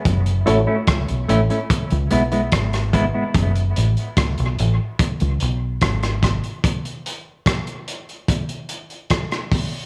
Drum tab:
HH |xxx-xxxxxxxxxxx-|xxxxxxx-xxx-xxxx|xxx-xxxxxxxxxxo-|
SD |----r-------rr--|----r-------rrr-|----r-------rr--|
BD |o---o---o---o-o-|o---o---o---o-o-|o---o---o---o-o-|